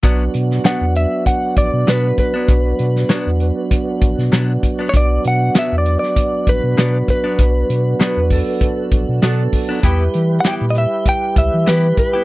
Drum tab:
HH |x-x-x-x-x-x-x-x-|x-x-x-x-x-x-x-x-|x-x-x-x-x-x-x-x-|x-x-x-o-x-x-x-o-|
SD |---oo-------o---|---oo------oo---|----o--o----o---|----o-------o---|
BD |o-------o-o---o-|o-------o-o---o-|o-------o-o---o-|o-----o-o-o---o-|

HH |x-x-x-x-x-x-x-x-|
SD |----o-------o---|
BD |o-------o-o---o-|